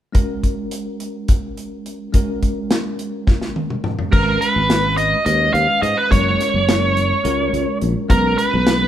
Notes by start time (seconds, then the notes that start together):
0.12 G#3 C#4 F#4 A#4, kick, closed hi-hat
0.43 kick, closed hi-hat
0.71 closed hi-hat
1.00 closed hi-hat
1.28 kick, closed hi-hat
1.57 closed hi-hat
1.86 closed hi-hat
2.12 G#3 C#4 F#4 A#4, kick, closed hi-hat
2.43 kick, closed hi-hat
2.71 snare, closed hi-hat
2.99 closed hi-hat
3.27 kick, snare
3.42 snare
3.56 high tom
3.70 mid tom
3.84 mid tom
3.99 floor tom
4.11 G#1 G#3 C#4 F#4 A#4 B4, kick, crash
4.41 B4, closed hi-hat
4.56 G#1
4.68 G#3 C#4 F#4 B4, snare, closed hi-hat
4.97 D#5, closed hi-hat
5.25 D#2 G#3 C#4 F#4 B4 D#5, closed hi-hat
5.53 D#2 F5, closed hi-hat
5.82 G#2 D#5, closed hi-hat
5.97 B4
6.11 F#1 G#3 C#4 F#4 A#4 C#5, kick, closed hi-hat
6.41 snare, closed hi-hat
6.54 F#1
6.68 G#3 C#4 F#4 A#4, snare, closed hi-hat
6.97 closed hi-hat
7.24 C#2 G#3 C#4 F#4 A#4, closed hi-hat
7.53 C#2, closed hi-hat
7.82 A#1, closed hi-hat
8.09 B1 G#3 C#4 F#4 A#4 B4, kick, closed hi-hat
8.38 B4, closed hi-hat
8.54 B1
8.66 G#3 C#4 F#4 B4, snare, closed hi-hat